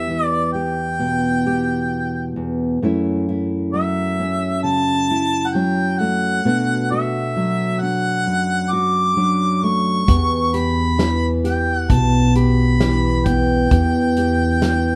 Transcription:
Already playing: nylon-string guitar E2 B3 G4, harmonica E5
0.09 nylon-string guitar E3
0.25 harmonica D5
0.52 nylon-string guitar G4, harmonica G5
0.99 nylon-string guitar B2
1.47 nylon-string guitar G4
2.36 nylon-string guitar E2
2.82 nylon-string guitar F#2 A3 C#4 E4
3.29 nylon-string guitar E4
3.73 nylon-string guitar F#3, harmonica E5
4.20 nylon-string guitar C#4
4.63 nylon-string guitar C#3, harmonica A5
5.10 nylon-string guitar E4
5.47 harmonica F#5
5.54 nylon-string guitar F#3 C#4, harmonica G5
5.99 nylon-string guitar A3, harmonica F#5
6.45 nylon-string guitar B2 A3 D4 F#4
6.91 nylon-string guitar F#4, harmonica E5
7.36 nylon-string guitar F#3
7.81 nylon-string guitar D4, harmonica F#5
8.27 nylon-string guitar F#2
8.71 nylon-string guitar F#4, harmonica D6
9.17 nylon-string guitar F#3 D4
9.63 nylon-string guitar A3, harmonica C#6
10.08 nylon-string guitar E2 B3 G4, upright bass E2, kick, closed hi-hat
10.54 nylon-string guitar G4, harmonica B5, closed hi-hat
10.98 nylon-string guitar E3, snare, closed hi-hat
11.44 nylon-string guitar G4, harmonica G5, closed hi-hat
11.76 harmonica F#5
11.89 upright bass B1, nylon-string guitar B2, harmonica A5, kick, closed hi-hat
12.35 nylon-string guitar G4, harmonica B5, closed hi-hat
12.80 nylon-string guitar E3 G4, snare, closed hi-hat
13.26 nylon-string guitar B3, harmonica G5, kick, closed hi-hat
13.71 nylon-string guitar E2 B3 G4, upright bass E2, kick, closed hi-hat
14.16 nylon-string guitar G4, closed hi-hat
14.62 nylon-string guitar E3, snare, closed hi-hat

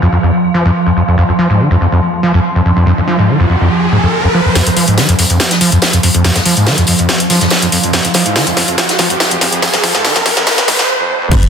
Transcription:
Already playing: synth drone F3
0.02 acid bass F2
0.12 acid bass F2
0.23 acid bass F2
0.54 acid bass F3
0.65 acid bass F2
0.86 acid bass F2
0.97 acid bass F2
1.08 acid bass F2
1.18 acid bass F2, riser
1.29 acid bass F2
1.39 acid bass F3
1.50 acid bass G#2
1.60 acid bass D#3
1.71 acid bass F2
1.81 acid bass F2
1.92 acid bass F2
2.23 acid bass F3
2.34 acid bass F2
2.55 acid bass F2
2.65 acid bass F2
2.77 acid bass F2
2.86 acid bass F2
2.98 acid bass F2
3.08 acid bass F3
3.19 acid bass G#2
3.29 acid bass D#3
3.40 acid bass F2
3.50 acid bass F2
3.61 acid bass F2
3.92 acid bass G#2
4.03 acid bass F2
4.24 acid bass F2
4.34 acid bass F3
4.45 acid bass F2
4.55 acid bass F2, synth drone F3, snare, closed hi-hat, tambourine, riser
4.67 acid bass F2, closed hi-hat
4.76 acid bass F3, open hi-hat, tambourine
4.88 acid bass G#2, closed hi-hat
4.98 acid bass D#3, snare, closed hi-hat, tambourine
5.09 acid bass F2, closed hi-hat
5.19 acid bass F2, open hi-hat, tambourine
5.30 acid bass F2, closed hi-hat
5.40 snare, closed hi-hat, tambourine
5.51 snare, closed hi-hat
5.61 acid bass F3, open hi-hat, tambourine
5.72 acid bass F2, closed hi-hat
5.82 snare, closed hi-hat, tambourine
5.93 acid bass F2, closed hi-hat
6.03 acid bass F2, open hi-hat, tambourine
6.14 acid bass F2, closed hi-hat
6.24 acid bass F2, snare, closed hi-hat, tambourine
6.35 acid bass F2, snare, closed hi-hat
6.46 acid bass F3, open hi-hat, tambourine
6.57 acid bass G#2, closed hi-hat
6.66 acid bass D#3, snare, closed hi-hat, tambourine
6.78 acid bass F2, closed hi-hat
6.87 acid bass F2, open hi-hat, tambourine
6.99 acid bass F2, closed hi-hat
7.09 snare, closed hi-hat, tambourine
7.20 closed hi-hat
7.30 acid bass F3, snare, open hi-hat, tambourine
7.41 acid bass F2, snare, closed hi-hat
7.50 snare, closed hi-hat, tambourine
7.62 acid bass F2, closed hi-hat
7.72 acid bass F2, open hi-hat, tambourine
7.83 acid bass F2, closed hi-hat
7.93 acid bass F2, snare, closed hi-hat, tambourine
8.05 acid bass F2, closed hi-hat
8.14 acid bass F3, snare, open hi-hat, tambourine
8.26 acid bass G#2, closed hi-hat
8.36 acid bass D#3, snare, closed hi-hat, tambourine
8.47 acid bass F2, closed hi-hat
8.57 acid bass F2, snare, open hi-hat, tambourine
8.68 acid bass F2, closed hi-hat
8.78 snare, closed hi-hat, tambourine
8.89 snare, closed hi-hat
8.99 acid bass F3, snare, open hi-hat, tambourine
9.10 acid bass F2, closed hi-hat
9.20 snare, closed hi-hat, tambourine
9.31 acid bass F2, closed hi-hat
9.41 acid bass F2, snare, open hi-hat, tambourine
9.52 acid bass F2, closed hi-hat
9.62 acid bass F2, snare, closed hi-hat, tambourine
9.74 acid bass F2, snare, closed hi-hat
9.84 acid bass F3, snare, open hi-hat, tambourine
9.95 acid bass G#2, snare, closed hi-hat
10.04 acid bass D#3, snare, closed hi-hat, tambourine
10.16 acid bass F2, snare, closed hi-hat
10.26 acid bass F2, snare, open hi-hat, tambourine
10.37 acid bass F2, snare, closed hi-hat
10.47 snare, closed hi-hat, tambourine
10.58 snare, closed hi-hat
10.68 acid bass G#2, snare, open hi-hat, tambourine
10.79 snare, closed hi-hat
11.00 acid bass F2
11.10 acid bass D#2
11.21 acid bass F2
11.31 acid bass F2, synth drone F3, kick, closed hi-hat, crash, ride, tambourine, sub drop
11.43 sub bass F1, closed hi-hat

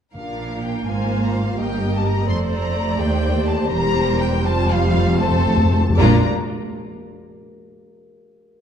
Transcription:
0.15 double bass section A#1, timpani A#2, cello section A#2, viola section A#3 D4, violin section A#4 F5
0.64 violin section G5
0.87 double bass section G#1, cello section G#2, viola section F4, violin section C5 F5 G#5
1.26 violin section A#5
1.36 violin section F5
1.59 double bass section G1, cello section G2, viola section G4, violin section A#4 D#5 G5
1.96 violin section A5
2.07 violin section A#5
2.29 double bass section F1, cello section F2, viola section A3 A4, violin section C5 D5 C6
2.53 violin section A#5
2.98 double bass section D#2, cello section D#2, viola section G4, violin section C5 G5
3.47 violin section A5
3.70 double bass section E1, cello section E2, viola section G3 G4, violin section A#4 C5 A#5
4.20 violin section G5
4.43 double bass section F1, timpani F2, cello section F2, viola section F4, violin section C5 A5
4.51 timpani F2
4.58 timpani F2
4.66 timpani F2
4.71 timpani F2, violin section F5
4.83 timpani F2
4.90 timpani F2
4.98 timpani F2
5.06 timpani F2
5.14 timpani F2
5.19 viola section A3 C4, violin section A4 C5 A5
5.23 timpani F2
5.31 timpani F2
5.39 timpani F2
5.47 timpani F2
5.57 timpani F2
5.65 timpani F2
5.72 timpani F2
5.81 timpani F2
5.90 timpani F2
5.98 double bass section A#1, timpani A#2, cello section A#2, viola section A#3 D4, violin section F4 D5 A#5

